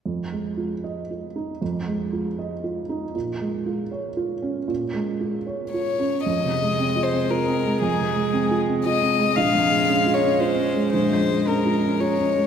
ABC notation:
X:1
M:3/4
L:1/8
Q:1/4=116
K:Fm
V:1 name="Violin"
z6 | z6 | z6 | z4 d2 |
e3 c B2 | A3 z e2 | f3 d c2 | c2 B2 d2 |]
V:2 name="Felt piano"
F,, A, F e F E | F,, A, F e F E | B,, A, F d F D | B,, A, F d F D |
(3F,, C, A, (3C F C (3F C A, | (3F,, C, A, (3C F C (3F C A, | (3B,,, F,, A, (3D F D (3F D A, | (3B,,, F,, A, (3D F D (3F D A, |]
V:3 name="Cello" clef=bass
z6 | z6 | z6 | z6 |
A,6- | A,6 | A,6- | A,4- A, z |]